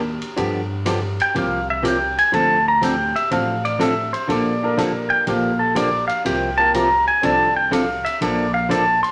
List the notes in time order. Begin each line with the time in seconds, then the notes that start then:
Already playing: D#2
0.22 ride
0.36 G2 D3 F3 B3 D4 G4, kick, ride
0.86 D3 F3 B3 D4 G4, kick, hi-hat pedal, ride
1.20 G5, ride
1.35 C2 C3 F3 A#3 F4 G4 F5, kick, ride
1.70 E5
1.83 C3 F3 A#3 F4 G4, kick, hi-hat pedal, ride
1.88 G5
2.18 G#5, ride
2.32 D2 D3 F3 C4 D4 A4 A5, kick, ride
2.68 A#5
2.82 D3 F3 C4 D4 A4 G5, kick, hi-hat pedal, ride
3.16 E5, ride
3.31 A1 D3 F3 C4 D4 A4 F5, kick, ride
3.65 D5, ride
3.79 D3 F3 C4 D4 A4 E5, kick, hi-hat pedal, ride
4.13 C5, ride
4.28 A#1 D3 F3 A#3 D4 A4, kick, ride
4.32 D5
4.63 A#3 D4 F4 A4 A#4
4.77 D3 F3 A#3 D4 A4, kick, hi-hat pedal, ride
5.10 G5
5.27 A#1 D3 F3 A#3 D4 G4 F5, kick, ride
5.59 A4
5.75 D3 F3 A#3 D4 G4 D5, kick, hi-hat pedal, ride
6.08 F5, ride
6.25 C2 C3 F3 A#3 F4 G4 G5, kick, ride
6.57 A#3 C4 F4 G4 A#4 A5
6.74 C3 F3 A#3 F4 G4, kick, hi-hat pedal, ride
7.08 G#5
7.22 C2 C3 F3 C4 D4 F4 A4 D5 A5, kick, ride
7.56 G5
7.71 C3 F3 C4 D4 A4 F5, kick, hi-hat pedal, ride
8.05 E5, ride
8.21 A#1 D3 F3 A#3 D4 A4 D5, kick, ride
8.54 F5
8.69 D3 F3 A#3 D4 A4 A5, kick, hi-hat pedal, ride
9.03 C6, ride